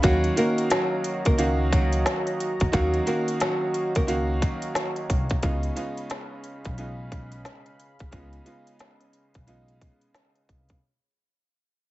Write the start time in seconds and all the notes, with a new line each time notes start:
0.02 D#2 D#3 F#3 A#3 C#4 F#4 C#5 D#5 F5 A#5, kick, closed hi-hat
0.24 closed hi-hat
0.36 D#3 A#3 C#4 F#4 A#4 F5, closed hi-hat
0.58 closed hi-hat
0.70 F#3 F#4, cross-stick, snare, closed hi-hat
1.04 closed hi-hat
1.25 C#2 A#3 A#4, kick, closed hi-hat
1.38 D#3 A#3 C#4 F#4 F5, closed hi-hat
1.72 F#3 F#4, kick, closed hi-hat
1.93 closed hi-hat
2.06 cross-stick, snare, closed hi-hat
2.27 closed hi-hat
2.40 closed hi-hat
2.60 D2, kick, closed hi-hat
2.72 D#2 D#3 F#3 A#3 C#4 F#4 F5, kick, closed hi-hat
2.94 closed hi-hat
3.06 D#3 A#3 C#4 F#4 A#4 F5, closed hi-hat
3.28 closed hi-hat
3.40 F#3 F#4, cross-stick, snare, closed hi-hat
3.74 closed hi-hat
3.95 C#2 A#3 A#4, kick, closed hi-hat
4.07 D#3 A#3 C#4 F#4 F5, closed hi-hat
4.42 F#3 F#4, kick, closed hi-hat
4.62 closed hi-hat
4.75 cross-stick, snare, closed hi-hat
4.96 closed hi-hat
5.10 C2, kick, closed hi-hat
5.30 kick, closed hi-hat
5.42 C#2 C#3 G#3 B3 D#4 F4 G#4 F5 B5, kick, closed hi-hat
5.63 closed hi-hat
5.75 C#3 G#3 B3 D#4 F4, closed hi-hat
5.97 closed hi-hat
6.10 cross-stick, snare, closed hi-hat
6.44 closed hi-hat
6.65 B1, kick, closed hi-hat
6.78 C#3 G#3 B3 D#4 F4, closed hi-hat
7.12 kick, closed hi-hat
7.32 closed hi-hat
7.45 cross-stick, snare, closed hi-hat
7.66 closed hi-hat
7.80 closed hi-hat
7.99 C2, kick, closed hi-hat
8.11 C#2 C#3 G#3 B3 D#4 F4, kick, closed hi-hat
8.33 closed hi-hat
8.45 C#3 G#3 B3 D#4 F4, closed hi-hat
8.67 closed hi-hat
8.79 cross-stick, snare, closed hi-hat
9.01 closed hi-hat
9.13 closed hi-hat
9.34 B1, kick, closed hi-hat
9.47 C#3 G#3 B3 D#4 F4, closed hi-hat
9.68 closed hi-hat
9.81 kick, closed hi-hat
10.01 closed hi-hat
10.14 cross-stick, snare, closed hi-hat
10.36 closed hi-hat
10.49 C2, kick, closed hi-hat
10.69 kick, closed hi-hat